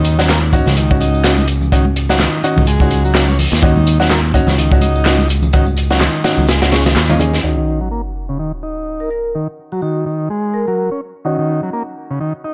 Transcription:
Already playing: D#2 D#3
0.04 closed hi-hat, tambourine
0.19 F#3 C#4 D#4 F#4, snare, tambourine
0.28 A#3, snare, clap, closed hi-hat, tambourine, high conga
0.53 C#4 D#4 F#4, kick, closed hi-hat, tambourine
0.66 C#2 C#3, snare, tambourine, high conga, low conga
0.77 D#3, closed hi-hat, tambourine
0.91 C#4 D#4 F#4, kick, tambourine
1.00 D#4, closed hi-hat, tambourine, high conga
1.15 tambourine
1.24 C#4 D#4 F#4, snare, clap, closed hi-hat, tambourine
1.38 high conga
1.48 closed hi-hat, tambourine
1.61 tambourine, low conga
1.72 D#3 C#4 D#4 F#4, kick, closed hi-hat, tambourine
1.85 high conga
1.96 closed hi-hat, tambourine
2.09 F#3 C#4 D#4 F#4, snare, tambourine
2.19 D#3, snare, clap, closed hi-hat, tambourine, high conga
2.43 D#3 C#4 D#4 F#4, closed hi-hat, tambourine
2.57 C#2, kick, tambourine, high conga, low conga
2.67 G#3, closed hi-hat, tambourine
2.80 C#4 D#4 F#4, kick, tambourine
2.91 closed hi-hat, tambourine, high conga
3.04 F#3, tambourine
3.15 C#4 D#4 F#4, snare, clap, closed hi-hat, tambourine
3.28 C#4, high conga
3.39 open hi-hat, tambourine, low conga
3.52 D#2, snare, tambourine
3.62 D#3 C#4 D#4 F#4, kick, closed hi-hat, tambourine
3.76 D#3, high conga
3.87 closed hi-hat, tambourine
4.00 F#3 C#4 D#4 F#4, snare, tambourine
4.10 A#3, snare, clap, closed hi-hat, tambourine, high conga
4.34 C#4 D#4 F#4, kick, closed hi-hat, tambourine
4.47 C#2 C#3, snare, tambourine, high conga, low conga
4.58 D#3, closed hi-hat, tambourine
4.71 C#4 D#4 F#4, kick, tambourine
4.81 D#4, closed hi-hat, tambourine, high conga
4.96 tambourine
5.05 C#4 D#4 F#4, snare, clap, closed hi-hat, tambourine
5.18 high conga
5.29 closed hi-hat, tambourine
5.42 tambourine, low conga
5.53 D#3 C#4 D#4 F#4, kick, closed hi-hat, tambourine
5.66 tambourine, high conga
5.77 closed hi-hat, tambourine
5.90 F#3 C#4 D#4 F#4, snare, tambourine
6.00 D#3, snare, clap, closed hi-hat, tambourine, high conga
6.14 tambourine
6.24 D#3 C#4 D#4 F#4, snare, closed hi-hat, tambourine
6.37 C#2, tambourine, high conga, low conga
6.48 G#3, snare, closed hi-hat, tambourine
6.62 C#4 D#4 F#4, snare, closed hi-hat, tambourine
6.72 C#4 D#4 G#4, snare, closed hi-hat, tambourine, high conga
6.85 D#3, snare, closed hi-hat, tambourine
6.96 D#2, snare, clap, closed hi-hat, tambourine
7.09 D#3 C#4 D#4 F4, tambourine, high conga
7.19 C#4 D#4 G#4, closed hi-hat, tambourine, low conga
7.34 snare, tambourine
7.43 D#3 C#4 D#4 F#4, sub drop
7.57 D#3
7.81 F#3
7.91 A#3
8.29 C#3
8.39 D#3
8.63 D#4
9.00 A#4
9.11 A#4
9.35 D#3
9.72 F#3 F#4
9.82 D#3 F#4
10.06 D#3
10.30 G#3
10.54 A#4
10.67 F#3 A#4
10.91 C#4
11.25 D#3 C#4 D#4 F#4
11.39 D#3
11.63 F#3
11.73 A#3
12.10 C#3
12.21 D#3
12.44 D#4

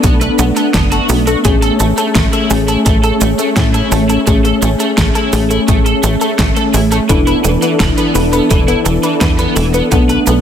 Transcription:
Already playing: A3 B3 D4 A4
0.04 B1 F#3 B3, kick, closed hi-hat, cabasa
0.21 A3 B4, closed hi-hat, cabasa
0.39 B1 B3 F#4, closed hi-hat, cabasa
0.56 B3 A4, closed hi-hat, cabasa
0.74 F#1 B3 A4, kick, snare, closed hi-hat, cabasa
0.92 F#4 A4, closed hi-hat, cabasa
1.09 B1 F#3 B3, open hi-hat, cabasa
1.27 A3 F#4, closed hi-hat, cabasa
1.45 A1 A3 C#4 G#4, kick, closed hi-hat, cabasa
1.62 A4, closed hi-hat, cabasa
1.80 A1 A3 A4, closed hi-hat, cabasa
1.98 A3 A4, closed hi-hat, cabasa
2.15 A1 G#3 A3, kick, snare, closed hi-hat, cabasa
2.33 A3 E4, closed hi-hat, cabasa
2.50 A1 A3 C#4 G#4, open hi-hat, cabasa
2.68 E4 A4, closed hi-hat, cabasa
2.86 A1 A3 A4, kick, closed hi-hat, cabasa
3.03 A4, closed hi-hat, cabasa
3.21 A1 G#3 A3, closed hi-hat, cabasa
3.39 A3, closed hi-hat, cabasa
3.56 A2 A3 G#4, kick, snare, closed hi-hat, cabasa
3.74 E4 A4, closed hi-hat, cabasa
3.92 A1 A3 A4, open hi-hat, cabasa
4.09 E4 A4, closed hi-hat, cabasa
4.27 A1 G#3 A3 C#4 G#4, kick, closed hi-hat, cabasa
4.45 A3 A4, closed hi-hat, cabasa
4.62 A1 A3 G#4, closed hi-hat, cabasa
4.80 A3 A4, closed hi-hat, cabasa
4.97 A1 A3 A4, kick, snare, closed hi-hat, cabasa
5.15 E4 A4, closed hi-hat, cabasa
5.33 A1 G#3 A3 C#4 G#4, open hi-hat, cabasa
5.50 A3 E4, closed hi-hat, cabasa
5.68 A1 A3 G#4, kick, closed hi-hat, cabasa
5.86 A4, closed hi-hat, cabasa
6.03 A1 A3 A4, closed hi-hat, cabasa
6.21 A3 A4, closed hi-hat, cabasa
6.38 A1 G#3 A3, kick, snare, closed hi-hat, cabasa
6.56 A3 A4, closed hi-hat, cabasa
6.74 A1 E4 G#4, open hi-hat, cabasa
6.92 A3 A4, closed hi-hat, cabasa
7.09 E1 E3 B3 D4 E4 A4 B4, kick, closed hi-hat, cabasa
7.27 E4 B4, closed hi-hat, cabasa
7.44 E1 E3 A3, closed hi-hat, cabasa
7.62 E3 B3, closed hi-hat, cabasa
7.80 E1 E3 A4, kick, snare, closed hi-hat, cabasa
7.98 B3 B4, closed hi-hat, cabasa
8.15 E1 E3 D4 E4 A4 B4, open hi-hat, cabasa
8.33 B3 B4, closed hi-hat, cabasa
8.50 E1 E3 A3, kick, closed hi-hat, cabasa
8.68 B3 E4, closed hi-hat, cabasa
8.86 E1 E3 A4, closed hi-hat, cabasa
9.03 E3 B4, closed hi-hat, cabasa
9.21 E2 E3 B4, kick, snare, closed hi-hat, cabasa
9.39 B3 B4, closed hi-hat, cabasa
9.56 E1 E3 A3, open hi-hat, cabasa
9.74 B3, closed hi-hat, cabasa
9.92 B1 A3 B3 D4 F#4 A4, kick, closed hi-hat, cabasa
10.09 A4 B4, closed hi-hat, cabasa
10.27 B1 B3 A4, closed hi-hat, cabasa

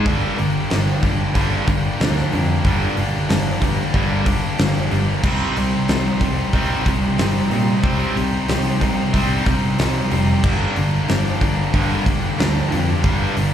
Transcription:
0.06 G1 G2 D3 G3 A#3 D4, kick, open hi-hat
0.38 G1 G2 D3 G3 A#3 D4, open hi-hat
0.70 G1 G2 D3 G3 A#3 D4, snare, open hi-hat
1.02 G1 G2 D3 G3 A#3 D4, kick, open hi-hat
1.34 G1 G2 D3 G3 A#3 D4, kick, open hi-hat
1.67 G1 G2 D3 G3 A#3 D4, kick, open hi-hat
1.99 D2 G2 D3 G3 A#3 D4, snare, open hi-hat
2.17 snare
2.32 F2 G2 D3 G3 A#3 D4, open hi-hat
2.65 G1 G2 D3 G3 A#3 D4, kick, open hi-hat
2.97 G1 G2 D3 G3 A#3 D4, open hi-hat
3.29 G1 G2 D3 G3 A#3 D4, snare, open hi-hat
3.61 G2 D3 G3 A#3 D4, kick, open hi-hat
3.94 G1 G2 D3 G3 A#3 D4, kick, open hi-hat
4.25 G2 D3 G3 A#3 D4, kick, open hi-hat
4.58 G1 G2 D3 G3 A#3 D4, snare, open hi-hat
4.91 G1 G2 D3 G3 A#3 D4, open hi-hat
5.23 C2 C3 G3 C4 D#4, kick, crash
5.55 C2 C3 G3 C4 D#4, open hi-hat
5.88 C2 C3 G3 C4 D#4, snare, open hi-hat
6.21 C2 C3 G3 C4 D#4, kick, open hi-hat
6.53 C2 C3 G3 C4 D#4, kick, open hi-hat
6.86 C2 C3 G3 C4 D#4, kick, open hi-hat
7.18 G1 C3 G3 C4 D#4, snare, open hi-hat
7.51 A#2 C3 G3 C4 D#4, open hi-hat
7.83 C2 C3 G3 C4 D#4, kick, open hi-hat
8.15 C2 C3 G3 C4 D#4, open hi-hat
8.48 C2 C3 G3 C4 D#4, snare, open hi-hat
8.81 C3 G3 C4 D#4, kick, open hi-hat
9.14 C2 C3 G3 C4 D#4, kick, open hi-hat
9.45 C3 G3 C4 D#4, kick, open hi-hat
9.79 C2 C3 G3 C4 D#4, snare, open hi-hat
10.11 F1 C3 G3 C4 D#4, open hi-hat
10.43 G1 G2 D3 G3 A#3 D4, kick, crash
10.76 G1 G2 D3 G3 A#3 D4, open hi-hat
11.08 G1 G2 D3 G3 A#3 D4, snare, open hi-hat
11.40 G1 G2 D3 G3 A#3 D4, kick, open hi-hat
11.73 G1 G2 D3 G3 A#3 D4, kick, open hi-hat
12.05 G1 G2 D3 G3 A#3 D4, kick, open hi-hat
12.37 D2 G2 D3 G3 A#3 D4, snare, open hi-hat
12.70 F2 G2 D3 G3 A#3 D4, open hi-hat
13.02 G1 G2 D3 G3 A#3 D4, kick, open hi-hat
13.35 G1 G2 D3 G3 A#3 D4, open hi-hat

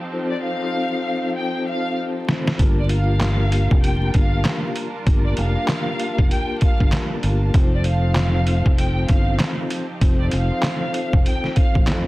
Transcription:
Already playing: F3 C4 D#4 G4 A5
0.12 C4 D#4 F4 A4 C5
0.30 D5
0.42 F5
0.62 C4 D#4 F4 A4 C5
0.74 C4 D#4 F4 A4 C5
1.37 G5
1.68 F5
2.27 C4 D#4 F4 A4 C5, snare
2.47 snare
2.58 G1 G3 A#3 D4 F4 G4 A#4 A5, kick, closed hi-hat
2.78 D5
2.89 F5, closed hi-hat
3.07 A#3 D4 F4 G4 A#4
3.21 snare, clap, closed hi-hat
3.50 A#3 D4 F4 G4 A#4, closed hi-hat
3.71 F1, kick
3.83 G5, closed hi-hat
4.14 G1 F5, kick, closed hi-hat
4.45 snare, clap, closed hi-hat
4.76 closed hi-hat
5.06 G1 A#3 D4 F4 G4 A#4, kick, closed hi-hat
5.24 D5
5.37 F1 F5, closed hi-hat
5.55 A#3 D4 F4 G4 A#4
5.68 A#3 D4 F4 G4 A#4, snare, clap, closed hi-hat
5.99 closed hi-hat
6.18 F1, kick
6.31 G5, closed hi-hat
6.61 F5, kick, closed hi-hat
6.80 G1, kick
6.92 snare, clap, closed hi-hat
7.23 G1 A#3 D4 F4 G4 A#4, closed hi-hat
7.54 F1 F3 C4 D#4 F4 G4 A4 C5, kick, closed hi-hat
7.75 D5
7.84 F5, closed hi-hat
8.02 C4 D#4 F4 A4 C5
8.15 snare, clap, closed hi-hat
8.46 C4 D#4 F4 A4 C5, closed hi-hat
8.66 F1, kick
8.78 G5, closed hi-hat
9.08 G1 F5, kick, closed hi-hat
9.39 snare, clap, closed hi-hat
9.70 closed hi-hat
10.01 F1 C4 D#4 F4 A4 C5, kick, closed hi-hat
10.19 D5
10.31 F1 F5, closed hi-hat
10.52 C4 D#4 F4 A4 C5
10.63 C4 D#4 F4 A4 C5, snare, clap, closed hi-hat
10.94 closed hi-hat
11.13 F1, kick
11.26 G5, closed hi-hat
11.44 snare
11.56 F5, kick, closed hi-hat
11.75 A1, kick
11.87 F2, snare, clap, closed hi-hat

